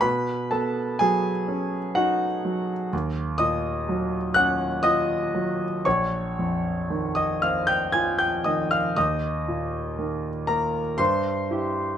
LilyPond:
<<
  \new Staff \with { instrumentName = "Grand piano" } { \time 3/4 \key b \mixolydian \tempo 4 = 59 <b' b''>8 <a' a''>8 <gis' gis''>4 <fis' fis''>4 | \key ees \mixolydian r8 <ees'' ees'''>4 <ges'' ges'''>8 <ees'' ees'''>4 | <des'' des'''>4~ <des'' des'''>16 <ees'' ees'''>16 <f'' f'''>16 <g'' g'''>16 <aes'' aes'''>16 <g'' g'''>16 <ees'' ees'''>16 <f'' f'''>16 | <ees'' ees'''>4. <bes' bes''>8 <c'' c'''>4 | }
  \new Staff \with { instrumentName = "Grand piano" } { \clef bass \time 3/4 \key b \mixolydian b,8 b8 fis8 cis'8 dis'8 fis8 | \key ees \mixolydian ees,8 bes,8 ges8 des'8 f'8 ges8 | bes,,8 f,8 ees8 c'8 f'8 ees8 | ees,8 bes,8 ees8 bes8 g,8 <e' g'>8 | }
>>